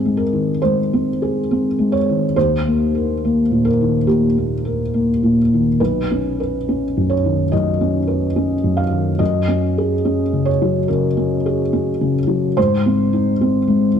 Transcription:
0.00 0.58 G#2 soft
0.00 0.93 C4 soft
0.00 1.22 G#4 medium
0.05 0.51 G#3 soft
0.17 0.61 A#4 soft
0.33 0.79 D#3 soft
0.62 1.09 G#3 soft
0.62 1.93 C5 soft
0.93 1.39 C4 soft
1.22 1.67 G#4 soft
1.51 1.96 C4 soft
1.79 2.24 G#3 soft
1.92 2.35 C#5 soft
2.09 2.37 D#3 soft
2.36 4.04 D#2 soft
2.36 3.65 C5 medium
2.67 3.11 A#3 soft
2.95 3.40 A#4 soft
3.25 3.69 A#3 soft
3.51 3.96 A#2 soft
3.65 4.07 A#4 soft
3.81 4.25 D#3 soft
4.07 4.53 A#2 soft
4.07 5.36 G4 soft
4.38 4.82 A#3 soft
4.65 5.10 A#4 soft
4.94 5.39 A#3 soft
5.23 5.68 A#2 soft
5.53 5.81 D#3 soft
5.80 7.49 B1 soft
5.80 6.39 B4 soft
6.11 6.56 C#4 soft
6.40 6.84 B4 soft
6.69 7.13 C#4 soft
6.97 7.42 F#2 soft
7.10 7.52 C#5 soft
7.25 7.69 D#3 soft
7.52 7.97 F#2 soft
7.52 8.78 D#5 soft
7.81 8.25 C#4 soft
8.08 8.52 B4 soft
8.36 8.81 C#4 soft
8.64 9.09 F#2 soft
8.77 9.20 F5 soft
8.91 9.20 D#3 soft
9.19 10.85 F#2 soft
9.19 10.46 D#5 medium
9.48 9.93 C#4 soft
9.78 10.22 G#4 soft
10.05 10.50 C#4 soft
10.33 10.78 C#3 soft
10.45 10.88 C#5 soft
10.62 11.06 F#3 soft
10.88 11.34 C#3 soft
10.88 12.14 A#4 soft
11.17 11.62 C#4 soft
11.46 11.90 G#4 soft
11.73 12.17 C#4 soft
12.01 12.46 C#3 soft
12.27 12.56 F#3 soft
12.57 14.00 G#2 soft
12.57 14.00 C5 medium
12.86 13.31 C4 soft
13.13 13.58 D#4 soft
13.41 13.86 C4 soft
13.67 14.00 G#3 soft
13.95 14.00 D#3 soft

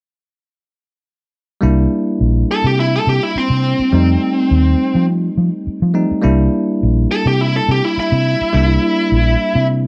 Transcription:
1.61 1.85 C2 medium
1.61 3.88 G3 medium
1.61 3.89 A#3 medium
1.61 3.89 D4 medium
1.61 3.89 E4 medium
2.21 2.43 A#1 medium
2.51 2.64 A4 medium
2.64 2.97 C3 medium
2.64 2.78 G4 medium
2.80 2.93 E4 medium
2.96 3.07 A4 medium
3.07 3.18 C3 medium
3.07 3.23 G4 medium
3.23 3.36 E4 medium
3.35 5.05 C4 medium
3.35 muted fingered electric bass stroke soft
3.50 3.73 C3 medium
3.79 muted fingered electric bass stroke soft
3.92 4.15 F2 medium
3.92 5.90 G3 medium
3.92 5.91 A3 medium
3.92 5.91 C4 medium
3.92 5.92 D#4 medium
4.51 4.73 D#2 medium
4.95 5.28 F3 medium
5.37 5.49 F3 medium
5.67 muted fingered electric bass stroke soft
5.82 6.04 F3 medium
5.94 6.20 G3 medium
5.94 6.23 A3 medium
5.94 6.23 C4 medium
5.94 6.24 D#4 medium
6.11 muted fingered electric bass stroke soft
6.22 6.47 C2 loud
6.22 8.49 G3 medium
6.22 8.49 A#3 medium
6.22 8.50 D4 medium
6.22 8.50 E4 medium
6.83 7.05 A#1 medium
7.11 7.25 A4 medium
7.26 7.59 C3 medium
7.26 7.41 G4 medium
7.41 7.54 E4 medium
7.56 7.68 A4 medium
7.68 7.80 C3 medium
7.68 7.85 G4 medium
7.85 7.97 E4 medium
7.97 9.67 E4 medium
7.97 muted fingered electric bass stroke soft
8.12 8.34 C3 medium
8.41 muted fingered electric bass stroke soft
8.53 8.77 C2 loud
8.53 9.87 G3 medium
8.53 9.87 A#3 medium
8.53 9.87 D4 medium
8.53 9.87 E4 medium
9.12 9.34 A#1 medium
9.55 9.87 C3 medium

